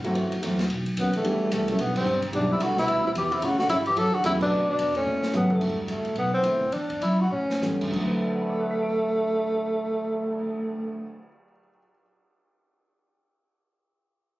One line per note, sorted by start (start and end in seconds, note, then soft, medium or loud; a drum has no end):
0.00 0.14 G2 medium
0.00 0.13 E3 medium
0.04 0.13 F#3 medium
0.04 0.14 A3 medium
0.04 0.14 C4 medium
0.04 0.15 F#4 medium
0.04 ride soft
0.14 0.41 F#2 medium
0.14 0.29 E3 medium
0.14 0.30 F#3 medium
0.14 0.30 A3 soft
0.14 0.30 C4 soft
0.14 0.30 F#4 medium
0.14 kick soft
0.14 ride medium
0.32 ride medium
0.41 0.69 E2 medium
0.41 0.56 E3 medium
0.41 0.57 F#3 medium
0.41 0.57 A3 medium
0.41 0.57 C4 medium
0.41 0.57 F#4 medium
0.41 kick soft
0.41 hi-hat pedal medium
0.41 ride medium
0.59 snare medium
0.59 ride soft
0.70 0.96 B1 medium
0.70 kick soft
0.70 ride medium
0.86 ride soft
0.97 1.23 D#2 medium
0.97 1.13 F#2 medium
0.97 1.13 B3 medium
0.97 kick soft
0.97 hi-hat pedal medium
0.97 ride medium
1.13 1.49 E2 medium
1.13 1.50 A3 medium
1.13 ride soft
1.24 1.51 E2 medium
1.24 1.99 E3 medium
1.24 1.99 G3 medium
1.24 2.00 B3 medium
1.24 2.00 D4 medium
1.24 2.00 G4 medium
1.24 kick soft
1.24 ride medium
1.51 1.78 C2 medium
1.51 1.67 E2 medium
1.51 1.67 A3 medium
1.51 kick soft
1.51 hi-hat pedal medium
1.51 ride medium
1.68 1.82 F#2 medium
1.68 1.82 A3 medium
1.68 ride soft
1.79 2.04 B1 medium
1.79 1.96 G2 medium
1.79 1.96 B3 medium
1.79 kick soft
1.79 ride medium
1.96 2.22 G2 medium
1.96 2.21 C4 medium
1.96 kick medium
1.96 crash medium
2.05 2.32 G1 medium
2.05 hi-hat pedal medium
2.22 kick soft
2.22 ride soft
2.32 2.59 B1 medium
2.32 2.50 B2 medium
2.32 3.08 E3 medium
2.32 3.08 G3 soft
2.32 3.08 B3 soft
2.32 3.09 D4 soft
2.32 2.49 D4 medium
2.32 3.09 G4 medium
2.32 kick soft
2.32 ride medium
2.51 2.63 C3 medium
2.51 2.64 E4 medium
2.60 2.87 C2 medium
2.60 2.77 D3 medium
2.60 2.78 F#4 medium
2.60 kick soft
2.60 hi-hat pedal medium
2.60 ride medium
2.77 3.03 B2 medium
2.77 3.03 E4 loud
2.77 snare medium
2.88 3.14 D2 medium
2.88 kick soft
2.88 ride medium
3.05 3.09 C3 medium
3.05 3.11 E4 medium
3.15 3.41 E2 medium
3.15 3.34 E3 medium
3.15 3.34 G4 medium
3.15 kick soft
3.15 hi-hat pedal medium
3.15 ride medium
3.32 3.44 C3 medium
3.32 3.46 E4 medium
3.32 ride soft
3.42 3.69 A2 medium
3.42 3.59 C#3 medium
3.42 3.59 F#4 medium
3.42 kick soft
3.42 ride medium
3.59 3.69 D3 medium
3.59 3.69 F#4 medium
3.59 snare soft
3.69 3.96 G2 medium
3.69 3.77 C#3 medium
3.69 3.77 E4 medium
3.69 kick soft
3.69 hi-hat pedal medium
3.69 ride medium
3.86 3.99 E3 medium
3.86 4.00 G4 medium
3.86 ride soft
3.97 4.12 F#2 medium
3.97 4.15 F#3 medium
3.97 4.16 A4 loud
3.97 kick soft
3.97 ride medium
4.14 4.24 D3 medium
4.14 4.25 F#4 medium
4.23 4.50 E2 medium
4.23 4.32 C#3 medium
4.23 4.51 F#3 medium
4.23 4.51 A3 medium
4.23 4.51 B3 medium
4.23 4.52 C#4 soft
4.23 4.32 E4 medium
4.23 4.52 G4 medium
4.23 kick soft
4.23 hi-hat pedal medium
4.23 ride medium
4.40 4.66 B2 medium
4.40 4.67 D4 medium
4.40 kick medium
4.40 crash medium
4.50 4.77 D2 medium
4.67 4.92 B2 medium
4.67 4.94 D4 medium
4.78 5.04 E2 medium
4.78 kick soft
4.78 hi-hat pedal medium
4.78 ride medium
4.94 5.45 A2 medium
4.94 5.31 C#4 medium
4.94 ride soft
5.05 5.32 A2 medium
5.05 high tom soft
5.22 snare medium
5.33 5.59 F#2 medium
5.33 5.60 F#3 medium
5.33 5.60 A3 soft
5.33 5.61 B3 soft
5.33 5.54 B3 medium
5.33 5.61 C#4 soft
5.33 5.61 G4 medium
5.33 floor tom medium
5.33 hi-hat pedal medium
5.50 5.78 A3 medium
5.50 mid tom medium
5.60 5.87 E2 medium
5.60 6.01 E3 soft
5.60 6.01 G3 soft
5.60 6.02 D4 soft
5.60 6.02 F#4 medium
5.60 kick medium
5.60 crash medium
5.88 6.15 A1 medium
5.88 6.14 A3 medium
5.88 kick soft
5.88 hi-hat pedal soft
5.88 ride medium
6.05 ride soft
6.16 6.43 B1 medium
6.16 6.33 B3 medium
6.16 kick soft
6.16 ride medium
6.34 6.75 C4 medium
6.42 6.71 D2 medium
6.42 6.58 E3 medium
6.42 6.59 A3 soft
6.42 6.59 B3 medium
6.42 6.59 E4 medium
6.42 kick soft
6.42 hi-hat pedal soft
6.42 ride medium
6.61 kick medium
6.72 7.00 E2 medium
6.72 7.02 D4 medium
6.72 kick soft
6.72 ride medium
6.90 kick soft
6.90 ride soft
7.01 7.30 F#2 medium
7.01 7.23 E4 medium
7.01 kick soft
7.01 hi-hat pedal medium
7.01 ride medium
7.21 7.31 F#4 medium
7.31 7.61 A2 medium
7.31 7.78 C#4 medium
7.50 snare medium
7.61 7.92 E3 medium
7.61 7.93 G3 soft
7.61 7.93 B3 soft
7.61 7.94 C#4 soft
7.61 7.94 A4 soft
7.61 snare medium
7.61 hi-hat pedal soft
7.81 11.04 D2 medium
7.81 kick medium
7.81 crash medium
7.86 11.09 D3 soft
7.91 11.12 D2 medium
7.91 11.13 F#3 soft
7.91 kick soft
7.91 crash medium
7.95 11.14 A3 medium
7.95 11.18 C4 soft
8.00 11.23 E4 soft
8.06 11.28 B4 medium
8.13 cymbal swell soft
8.25 11.44 D5 soft
8.33 11.52 F#5 soft
8.41 11.60 B5 soft
8.50 11.69 D6 soft
8.60 11.79 F#6 soft
8.71 11.90 B6 soft
8.82 12.01 D7 soft